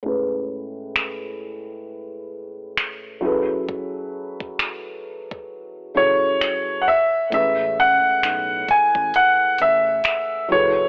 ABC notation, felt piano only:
X:1
M:4/4
L:1/8
Q:"Swing 16ths" 1/4=66
K:A
V:1 name="Felt piano"
[A,,G,CB]6- [A,,G,CB] [F,CEGAB]- | [F,CEGAB]4- [F,CEGAB] [F,CEGAc]2 z | [A,,G,CB]6- [A,,G,CB] [F,EGAB] |]